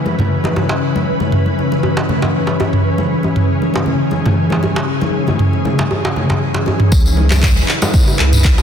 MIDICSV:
0, 0, Header, 1, 5, 480
1, 0, Start_track
1, 0, Key_signature, 4, "minor"
1, 0, Tempo, 508475
1, 773, Time_signature, 4, 2, 24, 8
1, 8137, End_track
2, 0, Start_track
2, 0, Title_t, "Ambient pad"
2, 0, Program_c, 0, 92
2, 0, Note_on_c, 0, 49, 79
2, 0, Note_on_c, 0, 52, 74
2, 0, Note_on_c, 0, 61, 74
2, 0, Note_on_c, 0, 71, 87
2, 2680, Note_off_c, 0, 71, 0
2, 2696, Note_on_c, 0, 68, 89
2, 6491, Note_off_c, 0, 49, 0
2, 6493, Note_off_c, 0, 52, 0
2, 6494, Note_off_c, 0, 61, 0
2, 6522, Note_off_c, 0, 68, 0
2, 6532, Note_on_c, 0, 64, 79
2, 6534, Note_on_c, 0, 49, 85
2, 6534, Note_on_c, 0, 63, 80
2, 6537, Note_on_c, 0, 71, 95
2, 8137, Note_off_c, 0, 49, 0
2, 8137, Note_off_c, 0, 63, 0
2, 8137, Note_off_c, 0, 64, 0
2, 8137, Note_off_c, 0, 71, 0
2, 8137, End_track
3, 0, Start_track
3, 0, Title_t, "Sub bass"
3, 0, Program_c, 1, 38
3, 6533, Note_on_c, 1, 37, 103
3, 7200, Note_off_c, 1, 37, 0
3, 7734, Note_on_c, 1, 37, 93
3, 8137, Note_off_c, 1, 37, 0
3, 8137, End_track
4, 0, Start_track
4, 0, Title_t, "Djembe"
4, 424, Note_on_c, 9, 62, 62
4, 518, Note_off_c, 9, 62, 0
4, 532, Note_on_c, 9, 63, 83
4, 626, Note_off_c, 9, 63, 0
4, 655, Note_on_c, 9, 62, 86
4, 749, Note_off_c, 9, 62, 0
4, 1730, Note_on_c, 9, 63, 71
4, 1824, Note_off_c, 9, 63, 0
4, 1859, Note_on_c, 9, 62, 89
4, 1953, Note_off_c, 9, 62, 0
4, 2097, Note_on_c, 9, 63, 74
4, 2099, Note_on_c, 9, 62, 75
4, 2192, Note_off_c, 9, 63, 0
4, 2193, Note_off_c, 9, 62, 0
4, 2333, Note_on_c, 9, 62, 61
4, 2427, Note_off_c, 9, 62, 0
4, 2457, Note_on_c, 9, 63, 84
4, 2552, Note_off_c, 9, 63, 0
4, 3061, Note_on_c, 9, 63, 53
4, 3155, Note_off_c, 9, 63, 0
4, 3545, Note_on_c, 9, 62, 71
4, 3640, Note_off_c, 9, 62, 0
4, 4270, Note_on_c, 9, 62, 66
4, 4364, Note_off_c, 9, 62, 0
4, 4375, Note_on_c, 9, 63, 74
4, 4470, Note_off_c, 9, 63, 0
4, 4496, Note_on_c, 9, 62, 92
4, 4590, Note_off_c, 9, 62, 0
4, 4987, Note_on_c, 9, 63, 53
4, 5081, Note_off_c, 9, 63, 0
4, 5465, Note_on_c, 9, 62, 83
4, 5559, Note_off_c, 9, 62, 0
4, 5578, Note_on_c, 9, 63, 72
4, 5672, Note_off_c, 9, 63, 0
4, 5709, Note_on_c, 9, 62, 93
4, 5804, Note_off_c, 9, 62, 0
4, 5945, Note_on_c, 9, 62, 79
4, 5946, Note_on_c, 9, 63, 77
4, 6039, Note_off_c, 9, 62, 0
4, 6040, Note_off_c, 9, 63, 0
4, 6178, Note_on_c, 9, 62, 69
4, 6272, Note_off_c, 9, 62, 0
4, 6303, Note_on_c, 9, 63, 76
4, 6397, Note_off_c, 9, 63, 0
4, 6901, Note_on_c, 9, 63, 61
4, 6995, Note_off_c, 9, 63, 0
4, 7384, Note_on_c, 9, 62, 81
4, 7478, Note_off_c, 9, 62, 0
4, 7625, Note_on_c, 9, 63, 64
4, 7719, Note_off_c, 9, 63, 0
4, 8100, Note_on_c, 9, 62, 79
4, 8137, Note_off_c, 9, 62, 0
4, 8137, End_track
5, 0, Start_track
5, 0, Title_t, "Drums"
5, 54, Note_on_c, 9, 63, 74
5, 59, Note_on_c, 9, 62, 34
5, 148, Note_off_c, 9, 63, 0
5, 153, Note_off_c, 9, 62, 0
5, 176, Note_on_c, 9, 45, 78
5, 185, Note_on_c, 9, 64, 87
5, 270, Note_off_c, 9, 45, 0
5, 280, Note_off_c, 9, 64, 0
5, 414, Note_on_c, 9, 63, 89
5, 509, Note_off_c, 9, 63, 0
5, 534, Note_on_c, 9, 62, 41
5, 628, Note_off_c, 9, 62, 0
5, 902, Note_on_c, 9, 63, 81
5, 904, Note_on_c, 9, 62, 48
5, 997, Note_off_c, 9, 63, 0
5, 998, Note_off_c, 9, 62, 0
5, 1133, Note_on_c, 9, 63, 59
5, 1135, Note_on_c, 9, 64, 73
5, 1228, Note_off_c, 9, 63, 0
5, 1230, Note_off_c, 9, 64, 0
5, 1249, Note_on_c, 9, 45, 80
5, 1249, Note_on_c, 9, 62, 33
5, 1343, Note_off_c, 9, 62, 0
5, 1344, Note_off_c, 9, 45, 0
5, 1377, Note_on_c, 9, 63, 55
5, 1472, Note_off_c, 9, 63, 0
5, 1499, Note_on_c, 9, 63, 58
5, 1594, Note_off_c, 9, 63, 0
5, 1623, Note_on_c, 9, 62, 49
5, 1717, Note_off_c, 9, 62, 0
5, 1973, Note_on_c, 9, 64, 82
5, 1975, Note_on_c, 9, 62, 37
5, 2068, Note_off_c, 9, 64, 0
5, 2070, Note_off_c, 9, 62, 0
5, 2102, Note_on_c, 9, 63, 57
5, 2197, Note_off_c, 9, 63, 0
5, 2453, Note_on_c, 9, 62, 45
5, 2547, Note_off_c, 9, 62, 0
5, 2577, Note_on_c, 9, 45, 82
5, 2672, Note_off_c, 9, 45, 0
5, 2814, Note_on_c, 9, 63, 72
5, 2815, Note_on_c, 9, 62, 47
5, 2909, Note_off_c, 9, 63, 0
5, 2910, Note_off_c, 9, 62, 0
5, 3050, Note_on_c, 9, 63, 56
5, 3145, Note_off_c, 9, 63, 0
5, 3172, Note_on_c, 9, 45, 83
5, 3172, Note_on_c, 9, 62, 33
5, 3266, Note_off_c, 9, 45, 0
5, 3266, Note_off_c, 9, 62, 0
5, 3415, Note_on_c, 9, 63, 61
5, 3510, Note_off_c, 9, 63, 0
5, 3528, Note_on_c, 9, 62, 47
5, 3622, Note_off_c, 9, 62, 0
5, 3643, Note_on_c, 9, 64, 76
5, 3738, Note_off_c, 9, 64, 0
5, 3881, Note_on_c, 9, 62, 38
5, 3885, Note_on_c, 9, 63, 73
5, 3975, Note_off_c, 9, 62, 0
5, 3980, Note_off_c, 9, 63, 0
5, 4017, Note_on_c, 9, 45, 85
5, 4020, Note_on_c, 9, 64, 100
5, 4112, Note_off_c, 9, 45, 0
5, 4115, Note_off_c, 9, 64, 0
5, 4250, Note_on_c, 9, 63, 81
5, 4344, Note_off_c, 9, 63, 0
5, 4368, Note_on_c, 9, 62, 49
5, 4462, Note_off_c, 9, 62, 0
5, 4731, Note_on_c, 9, 62, 47
5, 4737, Note_on_c, 9, 63, 84
5, 4826, Note_off_c, 9, 62, 0
5, 4831, Note_off_c, 9, 63, 0
5, 4974, Note_on_c, 9, 63, 59
5, 4981, Note_on_c, 9, 64, 88
5, 5069, Note_off_c, 9, 63, 0
5, 5076, Note_off_c, 9, 64, 0
5, 5091, Note_on_c, 9, 45, 84
5, 5096, Note_on_c, 9, 62, 38
5, 5185, Note_off_c, 9, 45, 0
5, 5190, Note_off_c, 9, 62, 0
5, 5222, Note_on_c, 9, 63, 52
5, 5316, Note_off_c, 9, 63, 0
5, 5333, Note_on_c, 9, 63, 62
5, 5336, Note_on_c, 9, 64, 81
5, 5427, Note_off_c, 9, 63, 0
5, 5430, Note_off_c, 9, 64, 0
5, 5461, Note_on_c, 9, 62, 49
5, 5555, Note_off_c, 9, 62, 0
5, 5818, Note_on_c, 9, 62, 36
5, 5819, Note_on_c, 9, 64, 80
5, 5912, Note_off_c, 9, 62, 0
5, 5913, Note_off_c, 9, 64, 0
5, 5940, Note_on_c, 9, 63, 58
5, 6034, Note_off_c, 9, 63, 0
5, 6288, Note_on_c, 9, 62, 55
5, 6383, Note_off_c, 9, 62, 0
5, 6416, Note_on_c, 9, 45, 90
5, 6511, Note_off_c, 9, 45, 0
5, 6531, Note_on_c, 9, 54, 67
5, 6534, Note_on_c, 9, 36, 121
5, 6625, Note_off_c, 9, 54, 0
5, 6628, Note_off_c, 9, 36, 0
5, 6658, Note_on_c, 9, 63, 70
5, 6662, Note_on_c, 9, 54, 39
5, 6752, Note_off_c, 9, 63, 0
5, 6756, Note_off_c, 9, 54, 0
5, 6769, Note_on_c, 9, 62, 53
5, 6863, Note_off_c, 9, 62, 0
5, 6896, Note_on_c, 9, 39, 85
5, 6896, Note_on_c, 9, 63, 107
5, 6908, Note_on_c, 9, 54, 77
5, 6990, Note_off_c, 9, 39, 0
5, 6990, Note_off_c, 9, 63, 0
5, 7003, Note_off_c, 9, 54, 0
5, 7011, Note_on_c, 9, 39, 101
5, 7011, Note_on_c, 9, 45, 95
5, 7014, Note_on_c, 9, 36, 121
5, 7017, Note_on_c, 9, 54, 69
5, 7105, Note_off_c, 9, 39, 0
5, 7105, Note_off_c, 9, 45, 0
5, 7109, Note_off_c, 9, 36, 0
5, 7111, Note_off_c, 9, 54, 0
5, 7135, Note_on_c, 9, 62, 39
5, 7146, Note_on_c, 9, 54, 40
5, 7229, Note_off_c, 9, 62, 0
5, 7240, Note_off_c, 9, 54, 0
5, 7254, Note_on_c, 9, 39, 85
5, 7348, Note_off_c, 9, 39, 0
5, 7381, Note_on_c, 9, 54, 80
5, 7382, Note_on_c, 9, 63, 110
5, 7475, Note_off_c, 9, 54, 0
5, 7476, Note_off_c, 9, 63, 0
5, 7490, Note_on_c, 9, 54, 62
5, 7494, Note_on_c, 9, 64, 86
5, 7495, Note_on_c, 9, 36, 121
5, 7495, Note_on_c, 9, 62, 56
5, 7585, Note_off_c, 9, 54, 0
5, 7588, Note_off_c, 9, 64, 0
5, 7589, Note_off_c, 9, 36, 0
5, 7589, Note_off_c, 9, 62, 0
5, 7622, Note_on_c, 9, 54, 35
5, 7717, Note_off_c, 9, 54, 0
5, 7734, Note_on_c, 9, 39, 85
5, 7828, Note_off_c, 9, 39, 0
5, 7858, Note_on_c, 9, 45, 96
5, 7861, Note_on_c, 9, 54, 73
5, 7862, Note_on_c, 9, 62, 41
5, 7953, Note_off_c, 9, 45, 0
5, 7955, Note_off_c, 9, 54, 0
5, 7957, Note_off_c, 9, 62, 0
5, 7963, Note_on_c, 9, 54, 69
5, 7971, Note_on_c, 9, 39, 107
5, 7972, Note_on_c, 9, 63, 60
5, 7975, Note_on_c, 9, 36, 118
5, 8058, Note_off_c, 9, 54, 0
5, 8066, Note_off_c, 9, 39, 0
5, 8066, Note_off_c, 9, 63, 0
5, 8069, Note_off_c, 9, 36, 0
5, 8101, Note_on_c, 9, 54, 40
5, 8137, Note_off_c, 9, 54, 0
5, 8137, End_track
0, 0, End_of_file